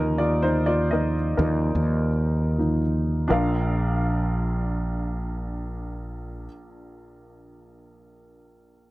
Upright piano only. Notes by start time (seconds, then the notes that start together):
Already playing: F3 A#3 D#4 A#4 D#5
0.18 F4 D5
0.42 D#4 C5
0.66 F4 D5
0.91 F3 A#3 D#4 A#4 D#5
1.37 F3 A#3 D#4 A#4
2.58 F3 A#3 D#4
3.28 A#1 D4 F4 A#4
3.32 F5